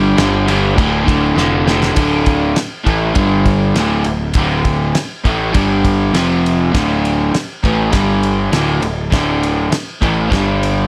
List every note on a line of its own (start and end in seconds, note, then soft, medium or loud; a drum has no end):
0.00 0.13 G1 loud
0.00 0.15 G2 medium
0.00 0.17 D3 medium
0.00 0.18 G3 loud
0.17 0.78 G1 loud
0.17 0.46 G2 medium
0.17 0.47 D3 medium
0.17 0.48 G3 medium
0.17 snare loud
0.17 ride loud
0.47 0.75 G2 medium
0.47 0.76 D3 medium
0.47 0.77 G3 medium
0.47 ride medium
0.75 1.31 D1 medium
0.75 1.03 D2 loud
0.75 1.04 A2 loud
0.75 1.05 D3 loud
0.75 kick loud
0.75 ride loud
1.04 1.34 D2 medium
1.04 1.35 A2 medium
1.04 1.36 D3 loud
1.08 kick medium
1.08 ride medium
1.35 1.90 F1 medium
1.35 1.66 D2 loud
1.35 1.67 A2 loud
1.35 1.67 D3 loud
1.35 snare medium
1.67 1.94 D2 medium
1.67 1.95 A2 medium
1.67 1.96 D3 loud
1.67 snare medium
1.83 snare loud
1.95 2.53 D1 medium
1.95 2.55 D2 medium
1.95 2.55 A2 medium
1.95 2.56 D3 loud
1.95 kick loud
1.95 ride loud
2.26 kick medium
2.26 ride medium
2.56 muted picked electric bass stroke soft
2.56 muted overdriven electric guitar stroke medium
2.56 snare loud
2.56 ride medium
2.84 3.14 A1 medium
2.84 3.14 A2 medium
2.84 3.14 E3 loud
2.84 3.15 A3 loud
2.84 kick medium
2.84 ride medium
3.15 3.71 G1 medium
3.15 3.74 G2 loud
3.15 3.74 D3 loud
3.15 3.75 G3 loud
3.15 kick loud
3.15 ride medium
3.46 kick medium
3.46 ride medium
3.75 4.03 D1 medium
3.75 4.04 D2 medium
3.75 4.05 A2 medium
3.75 4.05 D3 medium
3.75 snare loud
3.75 ride medium
4.04 4.33 D1 medium
4.04 4.30 D2 medium
4.04 4.30 A2 medium
4.04 ride medium
4.34 4.91 D1 medium
4.34 4.94 D2 medium
4.34 4.95 A2 loud
4.34 4.95 D3 loud
4.34 kick loud
4.34 ride medium
4.65 kick medium
4.65 ride medium
4.95 muted picked electric bass stroke soft
4.95 muted overdriven electric guitar stroke medium
4.95 snare loud
4.95 ride loud
5.24 5.52 A1 medium
5.24 5.52 A2 medium
5.24 5.53 E3 loud
5.24 5.54 A3 loud
5.24 kick medium
5.24 ride medium
5.52 6.11 G1 medium
5.52 6.12 G2 loud
5.52 6.13 D3 loud
5.52 6.13 G3 loud
5.52 kick loud
5.52 ride medium
5.85 kick medium
5.85 ride medium
6.12 6.69 F1 medium
6.12 6.72 F2 medium
6.12 6.72 C3 loud
6.12 6.73 F3 loud
6.12 snare loud
6.12 ride loud
6.46 ride medium
6.72 7.30 D1 medium
6.72 7.32 D2 medium
6.72 7.32 A2 medium
6.72 7.33 D3 loud
6.72 kick loud
6.72 snare loud
6.72 ride loud
7.05 ride medium
7.33 muted overdriven electric guitar stroke medium
7.33 muted picked electric bass stroke soft
7.33 snare loud
7.33 ride medium
7.64 7.91 A1 medium
7.64 7.90 A2 medium
7.64 7.91 E3 loud
7.64 7.92 A3 loud
7.64 kick medium
7.64 ride medium
7.91 8.49 G1 medium
7.91 8.51 G2 medium
7.91 8.51 D3 loud
7.91 8.52 G3 loud
7.91 kick loud
7.91 snare loud
7.91 ride medium
8.23 ride medium
8.52 8.80 D1 medium
8.52 8.81 D2 medium
8.52 8.81 A2 medium
8.52 8.82 D3 loud
8.52 snare loud
8.52 ride medium
8.81 9.10 D1 medium
8.81 9.07 D2 medium
8.81 9.07 A2 medium
8.81 ride medium
9.11 9.68 D1 medium
9.11 9.70 D2 loud
9.11 9.71 A2 medium
9.11 9.72 D3 loud
9.11 kick loud
9.11 snare loud
9.11 ride loud
9.43 ride medium
9.71 muted picked electric bass stroke soft
9.71 muted overdriven electric guitar stroke medium
9.71 snare loud
9.71 ride loud
10.01 10.30 A1 loud
10.01 10.28 A2 medium
10.01 10.29 E3 loud
10.01 10.30 A3 loud
10.01 kick medium
10.01 ride medium
10.29 10.87 G1 medium
10.29 10.87 G2 loud
10.29 10.87 D3 loud
10.29 10.87 G3 loud
10.29 kick loud
10.33 snare loud
10.33 ride medium
10.63 ride medium